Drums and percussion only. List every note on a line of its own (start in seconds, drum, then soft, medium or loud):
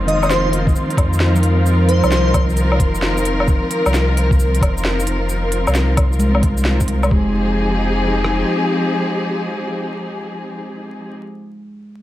0.08 open hi-hat medium
0.23 low woodblock medium
0.23 shaker medium
0.31 snare loud
0.31 shaker medium
0.53 open hi-hat medium
0.67 kick loud
0.67 shaker soft
0.76 shaker medium
0.90 open hi-hat soft
0.97 kick loud
0.97 open hi-hat medium
0.97 low woodblock medium
1.13 shaker medium
1.20 snare loud
1.36 shaker medium
1.43 open hi-hat medium
1.66 shaker medium
1.89 open hi-hat medium
2.04 low woodblock medium
2.04 shaker medium
2.12 snare loud
2.12 shaker medium
2.34 kick loud
2.34 open hi-hat medium
2.34 low woodblock medium
2.50 shaker soft
2.57 open hi-hat soft
2.57 shaker medium
2.72 low woodblock medium
2.80 kick loud
2.80 open hi-hat medium
2.95 shaker medium
3.02 snare loud
3.17 shaker medium
3.25 open hi-hat medium
3.40 low woodblock medium
3.48 kick loud
3.48 shaker medium
3.71 open hi-hat medium
3.86 low woodblock medium
3.86 shaker medium
3.94 snare loud
3.94 shaker medium
4.17 open hi-hat medium
4.31 kick loud
4.31 shaker soft
4.40 shaker medium
4.55 open hi-hat soft
4.62 kick loud
4.62 open hi-hat medium
4.62 low woodblock medium
4.78 shaker medium
4.85 snare loud
5.00 shaker medium
5.07 open hi-hat medium
5.29 shaker medium
5.52 open hi-hat medium
5.67 low woodblock medium
5.67 shaker medium
5.75 snare loud
5.75 shaker medium
5.97 kick loud
5.97 open hi-hat medium
5.97 low woodblock medium
6.13 shaker soft
6.20 open hi-hat soft
6.20 shaker medium
6.35 low woodblock medium
6.43 kick loud
6.43 open hi-hat medium
6.58 shaker medium
6.65 snare loud
6.80 kick medium
6.80 shaker medium
6.88 open hi-hat medium
7.03 low woodblock medium
7.03 shaker soft
7.11 kick loud
8.24 cross-stick medium